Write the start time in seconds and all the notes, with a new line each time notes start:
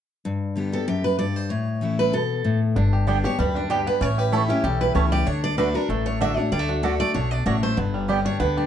0.25 G2
0.56 D3 G3 B3 G4
0.72 B3 G4 A4
0.88 F#2 G4
1.04 B4
1.19 G2 D5
1.36 C5
1.50 A2 C#5
1.81 E3 A3 C#4 E4
1.99 B4
2.13 B2 A4
2.44 A2
2.76 G1 G2 D4
2.93 G4
3.07 D3 G3 B3 D4 G4 D5 G5
3.24 B3 G4 C#5
3.39 D2 F#2 G3 B4
3.55 D4
3.70 G2 B3 G4 D5 G5
3.87 B3 B4
4.01 A1 A2 C#4 C#5
4.18 G4 B4
4.32 E3 A3 C#4 E4 A4 C#5 A5
4.48 C#4 E4 G4
4.64 B1 E2 G4 A4
4.81 E4 B4
4.95 C#2 E3 A3 C#4 E4 C#5 A5
5.12 G4 D5
5.26 D2 D3 D4 C#5
5.44 D5
5.57 D3 A3 D4 F#4 B4 D5 F#5
5.74 D4 F#4 A#4
5.89 A1 A2 A3 A4
6.06 D4 C#5
6.20 D3 A3 D4 F#4 D5 E5 F#5
6.37 D4 F#4 C#5
6.52 D2 D3 G3 D5
6.59 A3
6.69 D4 F#4
6.83 D3 A3 D4 F#4 A4 D5 F#5
7.00 A3 D5
7.14 B1 B2 D4 C#5
7.31 D4 D5
7.46 A1 A2 A3 D4 F#4 C#5 D5 F#5
7.63 A3 C5
7.77 G1 G2 B3
7.94 G3
8.08 D3 G3 B3 G4 D5 G5
8.25 D4 C#5
8.40 D2 D3 B3 B4
8.57 D4 G4